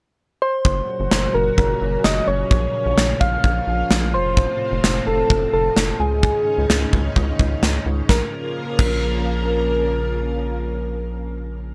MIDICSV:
0, 0, Header, 1, 5, 480
1, 0, Start_track
1, 0, Key_signature, -5, "minor"
1, 0, Tempo, 465116
1, 670, Time_signature, 4, 2, 24, 8
1, 12121, End_track
2, 0, Start_track
2, 0, Title_t, "Soft synth lead"
2, 0, Program_c, 0, 80
2, 433, Note_on_c, 0, 72, 110
2, 1388, Note_on_c, 0, 70, 95
2, 1403, Note_off_c, 0, 72, 0
2, 1622, Note_off_c, 0, 70, 0
2, 1628, Note_on_c, 0, 70, 100
2, 2108, Note_on_c, 0, 75, 103
2, 2124, Note_off_c, 0, 70, 0
2, 2349, Note_on_c, 0, 73, 99
2, 2364, Note_off_c, 0, 75, 0
2, 2581, Note_off_c, 0, 73, 0
2, 2587, Note_on_c, 0, 73, 118
2, 3309, Note_on_c, 0, 77, 122
2, 3324, Note_off_c, 0, 73, 0
2, 4273, Note_on_c, 0, 72, 113
2, 4289, Note_off_c, 0, 77, 0
2, 5230, Note_on_c, 0, 69, 101
2, 5245, Note_off_c, 0, 72, 0
2, 5705, Note_off_c, 0, 69, 0
2, 5711, Note_on_c, 0, 69, 96
2, 6157, Note_off_c, 0, 69, 0
2, 6194, Note_on_c, 0, 68, 101
2, 7831, Note_off_c, 0, 68, 0
2, 8350, Note_on_c, 0, 70, 92
2, 8484, Note_off_c, 0, 70, 0
2, 9070, Note_on_c, 0, 70, 104
2, 12121, Note_off_c, 0, 70, 0
2, 12121, End_track
3, 0, Start_track
3, 0, Title_t, "String machine"
3, 0, Program_c, 1, 50
3, 673, Note_on_c, 1, 49, 74
3, 674, Note_on_c, 1, 46, 82
3, 674, Note_on_c, 1, 54, 76
3, 674, Note_on_c, 1, 61, 74
3, 674, Note_on_c, 1, 66, 88
3, 2573, Note_off_c, 1, 54, 0
3, 2573, Note_off_c, 1, 66, 0
3, 2593, Note_on_c, 1, 53, 73
3, 2593, Note_on_c, 1, 65, 86
3, 4235, Note_off_c, 1, 49, 0
3, 4236, Note_off_c, 1, 46, 0
3, 4236, Note_off_c, 1, 61, 0
3, 4267, Note_on_c, 1, 45, 77
3, 4267, Note_on_c, 1, 48, 72
3, 4267, Note_on_c, 1, 60, 71
3, 6155, Note_off_c, 1, 65, 0
3, 6156, Note_off_c, 1, 53, 0
3, 6169, Note_off_c, 1, 48, 0
3, 6169, Note_off_c, 1, 60, 0
3, 6170, Note_off_c, 1, 45, 0
3, 6189, Note_on_c, 1, 44, 79
3, 6189, Note_on_c, 1, 49, 73
3, 6189, Note_on_c, 1, 51, 73
3, 6189, Note_on_c, 1, 61, 72
3, 6189, Note_on_c, 1, 63, 88
3, 8328, Note_off_c, 1, 44, 0
3, 8328, Note_off_c, 1, 49, 0
3, 8328, Note_off_c, 1, 51, 0
3, 8328, Note_off_c, 1, 61, 0
3, 8328, Note_off_c, 1, 63, 0
3, 8351, Note_on_c, 1, 53, 73
3, 8352, Note_on_c, 1, 58, 74
3, 8353, Note_on_c, 1, 49, 83
3, 8353, Note_on_c, 1, 65, 75
3, 8353, Note_on_c, 1, 70, 92
3, 12121, Note_off_c, 1, 49, 0
3, 12121, Note_off_c, 1, 53, 0
3, 12121, Note_off_c, 1, 58, 0
3, 12121, Note_off_c, 1, 65, 0
3, 12121, Note_off_c, 1, 70, 0
3, 12121, End_track
4, 0, Start_track
4, 0, Title_t, "Analog synth bass"
4, 0, Program_c, 2, 38
4, 670, Note_on_c, 2, 30, 107
4, 838, Note_off_c, 2, 30, 0
4, 1030, Note_on_c, 2, 30, 94
4, 1114, Note_off_c, 2, 30, 0
4, 1151, Note_on_c, 2, 30, 101
4, 1319, Note_off_c, 2, 30, 0
4, 1391, Note_on_c, 2, 30, 104
4, 1558, Note_off_c, 2, 30, 0
4, 1629, Note_on_c, 2, 30, 100
4, 1798, Note_off_c, 2, 30, 0
4, 1872, Note_on_c, 2, 30, 93
4, 2039, Note_off_c, 2, 30, 0
4, 2110, Note_on_c, 2, 30, 103
4, 2278, Note_off_c, 2, 30, 0
4, 2350, Note_on_c, 2, 30, 108
4, 2518, Note_off_c, 2, 30, 0
4, 2590, Note_on_c, 2, 34, 104
4, 2758, Note_off_c, 2, 34, 0
4, 2950, Note_on_c, 2, 34, 103
4, 3034, Note_off_c, 2, 34, 0
4, 3070, Note_on_c, 2, 34, 103
4, 3238, Note_off_c, 2, 34, 0
4, 3312, Note_on_c, 2, 34, 92
4, 3479, Note_off_c, 2, 34, 0
4, 3550, Note_on_c, 2, 34, 104
4, 3718, Note_off_c, 2, 34, 0
4, 3790, Note_on_c, 2, 34, 94
4, 3958, Note_off_c, 2, 34, 0
4, 4031, Note_on_c, 2, 34, 106
4, 4271, Note_on_c, 2, 29, 105
4, 4286, Note_off_c, 2, 34, 0
4, 4607, Note_off_c, 2, 29, 0
4, 4871, Note_on_c, 2, 29, 101
4, 4955, Note_off_c, 2, 29, 0
4, 4992, Note_on_c, 2, 29, 96
4, 5159, Note_off_c, 2, 29, 0
4, 5233, Note_on_c, 2, 29, 94
4, 5400, Note_off_c, 2, 29, 0
4, 5471, Note_on_c, 2, 29, 95
4, 5639, Note_off_c, 2, 29, 0
4, 5712, Note_on_c, 2, 29, 97
4, 5880, Note_off_c, 2, 29, 0
4, 5951, Note_on_c, 2, 29, 102
4, 6119, Note_off_c, 2, 29, 0
4, 6190, Note_on_c, 2, 37, 90
4, 6526, Note_off_c, 2, 37, 0
4, 6791, Note_on_c, 2, 37, 93
4, 6874, Note_off_c, 2, 37, 0
4, 6911, Note_on_c, 2, 37, 106
4, 7078, Note_off_c, 2, 37, 0
4, 7152, Note_on_c, 2, 37, 92
4, 7319, Note_off_c, 2, 37, 0
4, 7390, Note_on_c, 2, 37, 102
4, 7558, Note_off_c, 2, 37, 0
4, 7631, Note_on_c, 2, 37, 94
4, 7798, Note_off_c, 2, 37, 0
4, 7871, Note_on_c, 2, 37, 98
4, 8039, Note_off_c, 2, 37, 0
4, 8111, Note_on_c, 2, 37, 96
4, 8279, Note_off_c, 2, 37, 0
4, 8351, Note_on_c, 2, 34, 100
4, 8485, Note_off_c, 2, 34, 0
4, 9070, Note_on_c, 2, 34, 97
4, 12121, Note_off_c, 2, 34, 0
4, 12121, End_track
5, 0, Start_track
5, 0, Title_t, "Drums"
5, 670, Note_on_c, 9, 36, 97
5, 773, Note_off_c, 9, 36, 0
5, 1150, Note_on_c, 9, 38, 111
5, 1253, Note_off_c, 9, 38, 0
5, 1630, Note_on_c, 9, 36, 90
5, 1733, Note_off_c, 9, 36, 0
5, 2109, Note_on_c, 9, 38, 105
5, 2212, Note_off_c, 9, 38, 0
5, 2590, Note_on_c, 9, 36, 101
5, 2693, Note_off_c, 9, 36, 0
5, 3071, Note_on_c, 9, 38, 110
5, 3174, Note_off_c, 9, 38, 0
5, 3312, Note_on_c, 9, 36, 83
5, 3415, Note_off_c, 9, 36, 0
5, 3550, Note_on_c, 9, 36, 92
5, 3653, Note_off_c, 9, 36, 0
5, 4031, Note_on_c, 9, 38, 109
5, 4134, Note_off_c, 9, 38, 0
5, 4511, Note_on_c, 9, 36, 102
5, 4614, Note_off_c, 9, 36, 0
5, 4993, Note_on_c, 9, 38, 117
5, 5096, Note_off_c, 9, 38, 0
5, 5471, Note_on_c, 9, 36, 95
5, 5574, Note_off_c, 9, 36, 0
5, 5949, Note_on_c, 9, 38, 108
5, 6053, Note_off_c, 9, 38, 0
5, 6431, Note_on_c, 9, 36, 100
5, 6534, Note_off_c, 9, 36, 0
5, 6912, Note_on_c, 9, 38, 114
5, 7015, Note_off_c, 9, 38, 0
5, 7152, Note_on_c, 9, 36, 84
5, 7255, Note_off_c, 9, 36, 0
5, 7391, Note_on_c, 9, 36, 91
5, 7494, Note_off_c, 9, 36, 0
5, 7631, Note_on_c, 9, 36, 85
5, 7734, Note_off_c, 9, 36, 0
5, 7872, Note_on_c, 9, 38, 109
5, 7975, Note_off_c, 9, 38, 0
5, 8351, Note_on_c, 9, 36, 97
5, 8352, Note_on_c, 9, 38, 83
5, 8454, Note_off_c, 9, 36, 0
5, 8455, Note_off_c, 9, 38, 0
5, 9070, Note_on_c, 9, 36, 104
5, 9070, Note_on_c, 9, 49, 85
5, 9173, Note_off_c, 9, 49, 0
5, 9174, Note_off_c, 9, 36, 0
5, 12121, End_track
0, 0, End_of_file